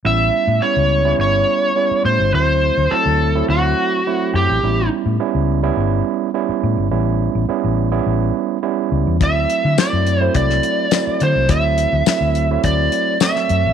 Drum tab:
HH |----------------|----------------|----------------|----------------|
TB |----------------|----------------|----------------|----------------|
SD |----------------|----------------|----------------|----------------|
BD |----------------|----------------|----------------|----------------|

HH |x-x-x-x-x-x-x-x-|x-x-x-x-x-x-x-x-|
TB |----x-------x---|----x-------x---|
SD |----o----o--o---|----o-------oo--|
BD |o-------o-------|o-------o-------|